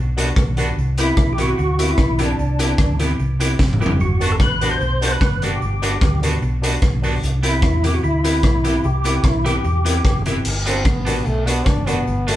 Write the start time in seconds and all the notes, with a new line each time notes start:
Already playing: B1
0.17 B3 D4 F#4 G4 B4, closed hi-hat, cabasa
0.36 B1 G4 B4, kick, cross-stick, cabasa
0.57 B3 D4 F#4 G4 B4, closed hi-hat, cabasa
0.77 C2, cabasa
0.98 B3 C4 E4 G4 B4, closed hi-hat, cabasa
1.17 B1 G4 B4, kick, cross-stick, cabasa
1.33 G4
1.38 B3 C4 E4 F#4 G4 B4, closed hi-hat, cabasa
1.58 D2, muted clean electric guitar stroke, cabasa
1.79 B3 C4 E4 G4 B4, closed hi-hat, cabasa
1.91 E4
1.98 B1 G4 B4, kick, cross-stick, cabasa
2.19 B3 C4 D4 E4 G4 B4, closed hi-hat, cabasa
2.39 C2, cabasa
2.58 B3 C4 E4 G4 B4, closed hi-hat, cabasa
2.78 D2 G4 B4, kick, cross-stick, cabasa
2.99 B3 C4 E4 G4 B4, closed hi-hat, cabasa
3.19 C2, muted clean electric guitar stroke, cabasa
3.39 B3 C4 E4 G4 B4, closed hi-hat, cabasa
3.59 F#1 G4 B4, kick, snare, cabasa
3.73 mid tom
3.80 B3 C4 E4 G4 B4, cabasa
3.86 floor tom
4.00 G1 F#4, cabasa
4.20 B3 D4 F#4 G4 B4, closed hi-hat, cabasa
4.32 A4
4.40 A1 G4 B4, kick, cross-stick, cabasa
4.61 B3 D4 F#4 G4 B4, closed hi-hat, cabasa
4.71 C5
4.81 B1, muted clean electric guitar stroke, cabasa
5.01 B3 D4 F#4 G4 B4, closed hi-hat, cabasa
5.12 B4
5.21 F#1 G4 B4, kick, cross-stick, cabasa
5.42 B3 D4 F#4 G4 B4, closed hi-hat, cabasa
5.62 G1, cabasa
5.82 B3 D4 F#4 G4 B4, closed hi-hat, cabasa
6.01 D2 G4 B4, kick, cross-stick, cabasa
6.22 B3 D4 F#4 G4 B4, closed hi-hat, cabasa
6.42 B1, muted clean electric guitar stroke, cabasa
6.62 B3 D4 F#4 G4 B4, closed hi-hat, cabasa
6.81 B1 G4 B4, kick, cross-stick, cabasa
7.02 B3 D4 F#4 G4 B4, open hi-hat, cabasa
7.23 C2, hi-hat pedal, cabasa
7.43 B3 C4 E4 G4 B4, closed hi-hat, cabasa
7.62 E2 G4 B4, kick, cross-stick, cabasa
7.83 B3 C4 E4 G4 B4, closed hi-hat, cabasa
7.94 F#4
8.03 D2 E4, muted clean electric guitar stroke, cabasa
8.23 B3 C4 E4 G4 B4, closed hi-hat, cabasa
8.43 B1 G4 B4, kick, cross-stick, cabasa
8.64 B3 C4 E4 G4 B4, closed hi-hat, cabasa
8.84 C2 G4, cabasa
9.04 B3 C4 E4 G4 B4, closed hi-hat, cabasa
9.24 B1 E4 G4 B4, kick, cross-stick, cabasa
9.44 B3 C4 E4 G4 B4, closed hi-hat, cabasa
9.64 E2, muted clean electric guitar stroke, cabasa
9.85 B3 C4 E4 G4 B4, closed hi-hat, cabasa
10.05 F#1 G4 B4, kick, cross-stick, cabasa
10.26 B3 C4 E4 G4 B4, closed hi-hat, cabasa
10.45 G1, crash, cabasa
10.66 B3 C4 D4 F#4 G4 B4, closed hi-hat, cabasa
10.85 A1 B3, kick, cross-stick, cabasa
11.05 B3 D4 F#4 G4 B4, closed hi-hat, cabasa
11.25 B1 A3, muted clean electric guitar stroke, cabasa
11.46 B3 D4 F#4 G4 B4, closed hi-hat, cabasa
11.66 F#1 D4 G4 B4, kick, cross-stick, cabasa
11.87 B3 D4 F#4 G4 B4, closed hi-hat, cabasa
12.07 G1, cabasa
12.27 A3 B3 D4 F#4 G4 B4, closed hi-hat, cabasa